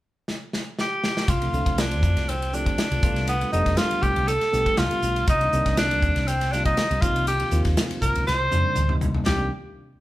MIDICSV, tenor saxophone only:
0, 0, Header, 1, 2, 480
1, 0, Start_track
1, 0, Tempo, 498753
1, 1233, Time_signature, 4, 2, 24, 8
1, 9626, End_track
2, 0, Start_track
2, 0, Title_t, "Tenor saxophone"
2, 0, Program_c, 0, 66
2, 775, Note_on_c, 0, 67, 83
2, 1241, Note_on_c, 0, 65, 83
2, 1255, Note_off_c, 0, 67, 0
2, 1731, Note_on_c, 0, 62, 76
2, 1745, Note_off_c, 0, 65, 0
2, 2206, Note_on_c, 0, 60, 74
2, 2220, Note_off_c, 0, 62, 0
2, 2451, Note_on_c, 0, 62, 84
2, 2466, Note_off_c, 0, 60, 0
2, 3156, Note_off_c, 0, 62, 0
2, 3162, Note_on_c, 0, 59, 86
2, 3383, Note_off_c, 0, 59, 0
2, 3389, Note_on_c, 0, 63, 85
2, 3636, Note_on_c, 0, 65, 95
2, 3650, Note_off_c, 0, 63, 0
2, 3871, Note_on_c, 0, 67, 89
2, 3885, Note_off_c, 0, 65, 0
2, 4114, Note_on_c, 0, 69, 96
2, 4129, Note_off_c, 0, 67, 0
2, 4600, Note_on_c, 0, 65, 89
2, 4614, Note_off_c, 0, 69, 0
2, 5079, Note_off_c, 0, 65, 0
2, 5093, Note_on_c, 0, 63, 90
2, 5533, Note_off_c, 0, 63, 0
2, 5567, Note_on_c, 0, 62, 96
2, 6041, Note_on_c, 0, 60, 83
2, 6055, Note_off_c, 0, 62, 0
2, 6274, Note_on_c, 0, 62, 83
2, 6289, Note_off_c, 0, 60, 0
2, 6396, Note_off_c, 0, 62, 0
2, 6402, Note_on_c, 0, 63, 81
2, 6751, Note_on_c, 0, 65, 82
2, 6766, Note_off_c, 0, 63, 0
2, 6994, Note_off_c, 0, 65, 0
2, 7003, Note_on_c, 0, 67, 80
2, 7342, Note_off_c, 0, 67, 0
2, 7715, Note_on_c, 0, 70, 81
2, 7938, Note_off_c, 0, 70, 0
2, 7959, Note_on_c, 0, 72, 97
2, 8636, Note_off_c, 0, 72, 0
2, 8913, Note_on_c, 0, 67, 75
2, 9135, Note_off_c, 0, 67, 0
2, 9626, End_track
0, 0, End_of_file